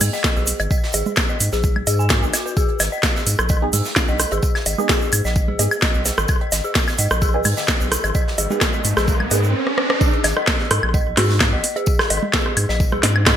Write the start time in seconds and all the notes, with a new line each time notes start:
0.00 G#2, open hi-hat, low conga, high woodblock, shaker
0.13 D#5, snare, shaker
0.24 kick, snare, tambourine, shaker
0.36 B1 G#4, shaker
0.47 open hi-hat, tambourine, shaker
0.59 G#1, closed hi-hat, high woodblock, low woodblock, shaker
0.71 D#5, kick, tambourine, shaker
0.84 snare
0.93 G#1 G#4, open hi-hat, tambourine, low woodblock, shaker
1.06 low conga, shaker
1.16 kick, snare, tambourine, high woodblock, shaker
1.29 D#5, shaker
1.40 G#2, open hi-hat, tambourine, shaker
1.52 A#1 G#4, snare, shaker
1.63 kick, tambourine, shaker
1.76 B1, low conga, high woodblock
1.87 G#2 G#4, open hi-hat, tambourine, low woodblock, shaker
1.99 G#5, shaker
2.09 F#4, kick, snare, tambourine, shaker
2.22 G#1 B3 D#4 G#4, shaker
2.33 F#4, snare, open hi-hat, tambourine, high woodblock, low woodblock, shaker
2.46 B4, shaker
2.57 G#4, kick, tambourine, shaker
2.68 closed hi-hat
2.80 G#1, snare, open hi-hat, tambourine, high woodblock, low woodblock, shaker
2.92 D#5, shaker
3.03 kick, snare, tambourine, shaker
3.16 G#4, snare, shaker
3.27 G#2, open hi-hat, tambourine, shaker
3.39 A#1, cross-stick, high woodblock, shaker
3.49 D#5, kick, tambourine, shaker
3.62 B1 B3 D#4 G#4
3.73 G#2 G#4, open hi-hat, low conga, shaker
3.85 snare, shaker
3.96 kick, snare, tambourine, high woodblock, shaker
4.08 B1 D#5, shaker
4.19 cross-stick, open hi-hat, tambourine, shaker
4.31 G#1 G#4, closed hi-hat, low woodblock, shaker
4.42 kick, tambourine, shaker
4.55 snare, high woodblock
4.66 G#1 D#5, open hi-hat, tambourine, low woodblock, shaker
4.78 B3 D#4 G#4, low conga, shaker
4.89 G#4, kick, snare, tambourine, shaker
5.01 shaker
5.12 G#2, open hi-hat, tambourine, high woodblock, shaker
5.25 A#1 D#5, snare, shaker
5.36 kick, tambourine, shaker
5.48 B1 G#4, low conga
5.59 G#2 B3 D#4 G#4, open hi-hat, tambourine, low woodblock, shaker
5.71 high woodblock, shaker
5.82 D#5, kick, snare, tambourine, shaker
5.94 B1, shaker
6.05 G#4, snare, open hi-hat, tambourine, low woodblock, shaker
6.18 G#1, cross-stick, shaker
6.28 kick, tambourine, riser, high woodblock, shaker
6.41 D#5, closed hi-hat
6.52 G#1, snare, open hi-hat, tambourine, low woodblock, shaker
6.64 G#4, shaker
6.75 kick, snare, tambourine, shaker
6.87 snare, high woodblock, shaker
6.98 G#2 D#5, open hi-hat, tambourine, shaker
7.11 A#1, cross-stick, shaker
7.22 G#4, kick, tambourine, shaker
7.34 B1 B3 D#4 G#4
7.44 G#2, open hi-hat, low conga, high woodblock, shaker
7.57 D#5, snare, shaker
7.68 kick, snare, tambourine, shaker
7.80 B1 G#4, shaker
7.92 cross-stick, open hi-hat, tambourine, shaker
8.04 G#1, closed hi-hat, high woodblock, low woodblock, shaker
8.15 D#5, kick, tambourine, shaker
8.28 snare
8.38 G#1 G#4, open hi-hat, low woodblock, shaker
8.50 B3 D#4 G#4, low conga, shaker
8.61 kick, snare, tambourine, high woodblock, shaker
8.73 D#5, shaker
8.84 G#2, open hi-hat, tambourine, shaker
8.97 A#1 G#4, cross-stick, snare, shaker
9.08 kick, tambourine, shaker
9.20 B1, low conga, high woodblock
9.31 G#2 B3 D#4 G#4 A#4, open hi-hat, tambourine, low woodblock, shaker
9.44 shaker
9.67 cross-stick
9.78 cross-stick
9.90 cross-stick
10.01 G#4, kick, tambourine
10.13 closed hi-hat
10.23 G#1, snare, open hi-hat, tambourine, high woodblock, low woodblock
10.36 D#5, cross-stick
10.47 kick, snare, tambourine
10.59 G#4, snare
10.71 G#2, cross-stick, open hi-hat, tambourine
10.83 A#1, high woodblock
10.94 D#5, kick, tambourine
11.06 B1
11.17 G#2 F#4 G#4, cross-stick, snare, open hi-hat, low conga
11.29 F#4, snare
11.40 kick, snare, tambourine, high woodblock
11.53 G#1 D#5
11.64 open hi-hat, tambourine
11.76 G#4, closed hi-hat, low woodblock
11.86 kick, tambourine
11.99 cross-stick, snare, high woodblock
12.10 G#1 D#5, open hi-hat, tambourine, low woodblock
12.23 low conga
12.33 G#4, kick, snare, tambourine
12.46 cross-stick
12.57 G#2, open hi-hat, tambourine, high woodblock
12.69 A#1 D#5, snare
12.80 kick, tambourine
12.92 B1 G#4, cross-stick, low conga
13.03 G#2, snare, open hi-hat, tambourine, low woodblock
13.16 high woodblock
13.26 D#5, kick, cross-stick, snare, tambourine